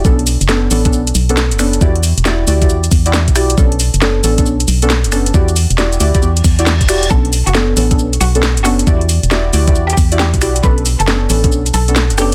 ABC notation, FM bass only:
X:1
M:4/4
L:1/16
Q:"Swing 16ths" 1/4=136
K:Bm
V:1 name="FM bass" clef=bass
B,,,3 F,,,3 A,,,2 B,,,2 B,,,3 F,,,3 | E,,3 E,,,3 D,,2 E,,2 E,,3 B,,,3 | B,,,3 F,,,3 A,,,2 B,,,2 B,,,3 F,,,3 | E,,3 E,,,3 D,, z E,,2 E,,3 E,,,3 |
B,,,3 F,,,3 A,,,2 B,,,2 B,,,3 F,,,3 | E,,3 E,,,3 D,,2 E,,2 E,,3 B,,,3 | B,,,3 F,,,3 A,,,2 B,,,2 B,,,3 F,,,3 |]